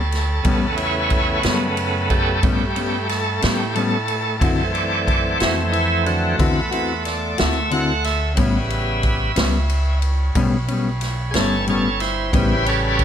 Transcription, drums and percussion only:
0.12 snare soft
0.12 ride medium
0.45 kick loud
0.45 ride medium
0.78 ride medium
1.10 kick medium
1.10 ride medium
1.43 snare loud
1.43 ride medium
1.77 ride medium
2.10 kick medium
2.10 ride medium
2.43 kick loud
2.43 ride medium
2.76 ride medium
3.09 snare soft
3.09 ride medium
3.42 snare loud
3.42 ride medium
3.76 ride medium
4.08 ride medium
4.41 kick loud
4.41 ride medium
4.75 ride medium
5.08 kick medium
5.08 ride medium
5.40 snare loud
5.40 ride medium
5.73 ride medium
6.06 ride medium
6.39 kick loud
6.39 ride medium
6.72 ride medium
7.05 snare soft
7.05 ride medium
7.38 snare loud
7.38 ride medium
7.71 ride medium
8.04 snare soft
8.04 ride medium
8.37 kick loud
8.37 ride medium
8.70 ride medium
9.03 kick medium
9.03 ride medium
9.36 snare loud
9.36 ride medium
9.70 ride medium
10.02 ride medium
10.35 kick loud
10.35 ride medium
10.68 ride medium
11.01 snare soft
11.01 ride medium
11.34 snare loud
11.34 ride medium
11.68 ride medium
12.00 snare soft
12.00 ride medium
12.33 kick loud
12.33 ride medium
12.66 ride medium
12.99 kick medium
12.99 ride medium

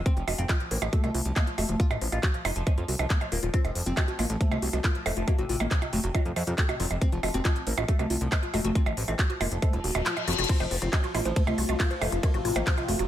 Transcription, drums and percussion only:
0.06 kick loud
0.06 closed hi-hat medium
0.17 closed hi-hat soft
0.28 open hi-hat loud
0.28 percussion blips medium
0.38 closed hi-hat medium
0.49 kick loud
0.49 clap loud
0.49 closed hi-hat soft
0.49 percussion blips soft
0.60 closed hi-hat soft
0.71 open hi-hat loud
0.82 closed hi-hat medium
0.82 percussion blips medium
0.93 kick loud
0.93 closed hi-hat medium
1.04 closed hi-hat soft
1.04 percussion blips soft
1.15 open hi-hat loud
1.25 closed hi-hat medium
1.36 kick loud
1.36 clap loud
1.36 closed hi-hat medium
1.36 percussion blips medium
1.47 closed hi-hat soft
1.58 open hi-hat loud
1.58 percussion blips soft
1.69 closed hi-hat soft
1.80 kick loud
1.80 closed hi-hat medium
1.91 closed hi-hat soft
1.91 percussion blips medium
2.01 open hi-hat loud
2.12 closed hi-hat medium
2.12 percussion blips soft
2.23 kick loud
2.23 clap loud
2.23 closed hi-hat soft
2.34 closed hi-hat soft
2.45 open hi-hat loud
2.45 percussion blips medium
2.56 closed hi-hat medium
2.67 kick loud
2.67 closed hi-hat soft
2.67 percussion blips soft
2.78 closed hi-hat soft
2.88 open hi-hat loud
2.99 closed hi-hat medium
2.99 percussion blips medium
3.10 kick loud
3.10 clap loud
3.10 closed hi-hat medium
3.21 closed hi-hat soft
3.21 percussion blips soft
3.32 open hi-hat loud
3.43 closed hi-hat soft
3.54 kick loud
3.54 closed hi-hat medium
3.65 closed hi-hat soft
3.65 percussion blips soft
3.75 open hi-hat loud
3.86 closed hi-hat medium
3.97 kick loud
3.97 clap loud
3.97 closed hi-hat medium
3.97 percussion blips medium
4.08 closed hi-hat soft
4.19 open hi-hat loud
4.19 percussion blips soft
4.30 closed hi-hat soft
4.41 kick loud
4.41 closed hi-hat soft
4.51 closed hi-hat soft
4.51 percussion blips medium
4.62 open hi-hat loud
4.73 closed hi-hat medium
4.73 percussion blips soft
4.84 kick loud
4.84 clap loud
4.84 closed hi-hat medium
4.95 closed hi-hat soft
5.06 open hi-hat loud
5.06 percussion blips medium
5.17 closed hi-hat soft
5.28 kick loud
5.28 closed hi-hat medium
5.28 percussion blips soft
5.38 closed hi-hat soft
5.49 open hi-hat loud
5.60 closed hi-hat medium
5.60 percussion blips medium
5.71 kick loud
5.71 clap loud
5.71 closed hi-hat medium
5.82 closed hi-hat soft
5.82 percussion blips soft
5.93 open hi-hat loud
6.04 closed hi-hat medium
6.15 kick loud
6.15 closed hi-hat medium
6.15 percussion blips medium
6.25 closed hi-hat soft
6.36 open hi-hat loud
6.36 percussion blips soft
6.47 closed hi-hat medium
6.58 kick loud
6.58 clap loud
6.58 closed hi-hat medium
6.69 closed hi-hat soft
6.69 percussion blips medium
6.80 open hi-hat loud
6.91 closed hi-hat medium
6.91 percussion blips soft
7.01 kick loud
7.01 closed hi-hat medium
7.12 closed hi-hat soft
7.23 open hi-hat loud
7.23 percussion blips medium
7.34 closed hi-hat medium
7.45 kick loud
7.45 clap loud
7.45 closed hi-hat medium
7.45 percussion blips soft
7.56 closed hi-hat soft
7.67 open hi-hat loud
7.78 closed hi-hat medium
7.78 percussion blips medium
7.88 kick loud
7.88 closed hi-hat medium
7.99 closed hi-hat soft
7.99 percussion blips soft
8.10 open hi-hat loud
8.21 closed hi-hat medium
8.32 kick loud
8.32 clap loud
8.32 closed hi-hat medium
8.32 percussion blips medium
8.43 closed hi-hat soft
8.54 open hi-hat loud
8.54 percussion blips soft
8.65 closed hi-hat medium
8.75 kick loud
8.75 closed hi-hat medium
8.86 closed hi-hat soft
8.86 percussion blips medium
8.97 open hi-hat loud
9.08 closed hi-hat medium
9.08 percussion blips soft
9.19 kick loud
9.19 clap loud
9.19 closed hi-hat medium
9.30 closed hi-hat soft
9.41 open hi-hat loud
9.41 percussion blips medium
9.52 closed hi-hat medium
9.62 kick loud
9.62 closed hi-hat medium
9.62 percussion blips soft
9.73 closed hi-hat soft
9.84 open hi-hat loud
9.95 closed hi-hat medium
9.95 percussion blips medium
10.06 clap loud
10.06 closed hi-hat medium
10.17 closed hi-hat soft
10.17 percussion blips soft
10.28 closed hi-hat medium
10.28 open hi-hat loud
10.33 closed hi-hat medium
10.38 closed hi-hat medium
10.44 closed hi-hat medium
10.49 kick loud
10.49 crash medium
10.49 ride medium
10.60 closed hi-hat soft
10.60 percussion blips soft
10.71 open hi-hat loud
10.82 closed hi-hat medium
10.93 kick loud
10.93 clap loud
10.93 closed hi-hat medium
10.93 ride medium
10.93 percussion blips medium
11.04 closed hi-hat soft
11.15 open hi-hat loud
11.15 percussion blips soft
11.25 closed hi-hat medium
11.36 kick loud
11.36 closed hi-hat medium
11.36 ride medium
11.47 closed hi-hat soft
11.47 percussion blips medium
11.58 open hi-hat loud
11.69 closed hi-hat medium
11.69 percussion blips soft
11.80 kick loud
11.80 clap loud
11.80 closed hi-hat medium
11.80 ride medium
11.91 closed hi-hat soft
12.01 open hi-hat loud
12.01 percussion blips medium
12.12 closed hi-hat medium
12.23 kick loud
12.23 closed hi-hat medium
12.23 ride medium
12.23 percussion blips soft
12.34 closed hi-hat soft
12.45 open hi-hat loud
12.56 closed hi-hat medium
12.56 percussion blips medium
12.67 kick loud
12.67 clap loud
12.67 closed hi-hat medium
12.67 ride medium
12.78 closed hi-hat soft
12.78 percussion blips soft
12.88 open hi-hat loud
12.99 closed hi-hat medium

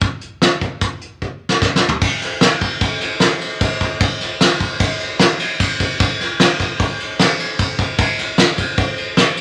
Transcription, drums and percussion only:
0.01 kick loud
0.01 closed hi-hat medium
0.21 closed hi-hat medium
0.42 snare loud
0.42 closed hi-hat medium
0.61 kick medium
0.61 closed hi-hat medium
0.81 kick loud
0.81 snare soft
0.81 closed hi-hat loud
1.01 closed hi-hat medium
1.22 kick medium
1.49 snare medium
1.62 kick loud
1.62 snare medium
1.76 snare medium
1.89 floor tom medium
2.01 kick loud
2.01 crash loud
2.22 snare soft
2.22 ride medium
2.41 snare loud
2.41 ride loud
2.61 kick medium
2.61 ride medium
2.81 kick loud
2.81 ride loud
3.01 snare soft
3.01 ride medium
3.20 snare loud
3.20 ride loud
3.41 ride medium
3.61 kick loud
3.61 snare soft
3.61 ride loud
3.81 kick medium
3.81 snare soft
3.81 ride medium
4.00 kick loud
4.00 ride loud
4.21 snare soft
4.21 ride medium
4.41 snare loud
4.41 ride loud
4.60 kick medium
4.60 ride medium
4.80 kick loud
4.80 snare soft
4.80 ride loud
5.00 ride medium
5.19 snare loud
5.19 ride loud
5.40 ride medium
5.60 kick loud
5.60 snare soft
5.60 ride loud
5.80 kick medium
5.80 ride medium
6.00 kick loud
6.00 ride loud
6.21 snare soft
6.21 ride medium
6.40 snare loud
6.40 ride loud
6.59 kick medium
6.59 snare soft
6.59 ride medium
6.80 kick loud
6.80 ride loud
7.00 ride medium
7.19 snare loud
7.19 ride loud
7.39 ride medium
7.58 kick loud
7.58 ride loud
7.79 kick medium
7.79 ride medium
7.99 kick loud
7.99 ride loud
8.19 snare soft
8.19 ride medium
8.38 snare loud
8.38 ride loud
8.58 kick medium
8.58 ride medium
8.77 kick loud
8.77 ride loud
8.98 ride medium
9.17 snare loud
9.17 ride loud
9.37 ride medium

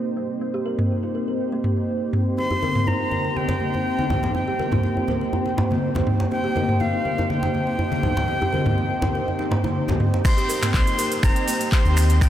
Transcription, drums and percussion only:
0.79 mid tom medium
1.64 mid tom medium
2.13 mid tom medium
2.38 muted conga soft
2.51 djembe tone medium
2.62 muted conga soft
2.62 high conga medium
2.75 mid tom medium
2.87 muted conga soft
2.87 djembe tone medium
3.11 djembe tone medium
3.11 high conga medium
3.24 muted conga soft
3.36 high conga medium
3.49 djembe slap medium
3.49 muted conga soft
3.49 djembe tone medium
3.60 high conga medium
3.74 muted conga soft
3.74 djembe tone medium
3.98 muted conga soft
3.98 high conga loud
4.10 djembe tone medium
4.10 low conga medium
4.23 djembe slap medium
4.23 low conga medium
4.35 muted conga soft
4.35 djembe tone medium
4.59 muted conga soft
4.59 high conga medium
4.72 mid tom medium
4.72 djembe tone medium
4.72 low conga medium
4.83 muted conga soft
4.97 djembe tone medium
5.08 high conga soft
5.08 low conga medium
5.21 muted conga soft
5.33 djembe tone medium
5.46 muted conga soft
5.58 mid tom medium
5.58 djembe slap loud
5.58 djembe tone medium
5.71 muted conga soft
5.71 high conga medium
5.95 muted conga soft
5.95 djembe slap medium
5.95 high conga medium
5.95 djembe tone medium
5.95 low conga medium
6.07 mid tom medium
6.20 djembe slap medium
6.20 djembe tone medium
6.32 muted conga soft
6.56 muted conga soft
6.56 high conga medium
6.56 djembe tone medium
6.69 mid tom medium
6.80 muted conga medium
6.80 djembe tone medium
7.05 high conga medium
7.18 muted conga soft
7.18 djembe tone medium
7.30 high conga medium
7.43 djembe slap medium
7.43 muted conga soft
7.43 djembe tone medium
7.55 high conga medium
7.67 muted conga soft
7.79 djembe tone medium
7.92 muted conga medium
7.92 high conga loud
8.03 djembe tone medium
8.03 low conga loud
8.17 djembe slap medium
8.17 low conga medium
8.28 muted conga soft
8.42 djembe tone medium
8.52 muted conga soft
8.52 high conga medium
8.66 mid tom medium
8.66 djembe tone medium
8.66 low conga medium
8.78 muted conga medium
9.02 djembe slap medium
9.02 high conga medium
9.02 djembe tone medium
9.02 low conga medium
9.15 muted conga soft
9.28 djembe tone medium
9.39 muted conga medium
9.51 mid tom medium
9.51 djembe slap medium
9.64 muted conga soft
9.64 djembe tone medium
9.64 high conga medium
9.88 muted conga soft
9.88 djembe slap medium
9.88 djembe tone medium
9.88 high conga medium
9.88 low conga loud
10.00 mid tom medium
10.14 djembe slap medium
10.25 finger snap medium
10.25 kick loud
10.25 crash loud
10.25 shaker medium
10.38 closed hi-hat soft
10.38 shaker soft
10.49 open hi-hat medium
10.49 shaker loud
10.63 finger snap medium
10.63 clap soft
10.63 closed hi-hat medium
10.63 mid tom medium
10.63 shaker soft
10.74 kick loud
10.74 clap loud
10.74 shaker medium
10.87 closed hi-hat soft
10.87 shaker soft
10.99 open hi-hat medium
10.99 shaker medium
11.12 closed hi-hat medium
11.12 shaker soft
11.23 finger snap medium
11.23 kick loud
11.23 shaker medium
11.36 closed hi-hat soft
11.36 shaker soft
11.48 open hi-hat medium
11.48 shaker loud
11.60 closed hi-hat medium
11.60 shaker soft
11.72 kick loud
11.72 clap loud
11.72 shaker soft
11.85 shaker soft
11.97 finger snap medium
11.97 open hi-hat medium
11.97 shaker medium
12.09 closed hi-hat medium
12.09 shaker soft
12.21 finger snap medium
12.21 kick loud
12.21 shaker medium

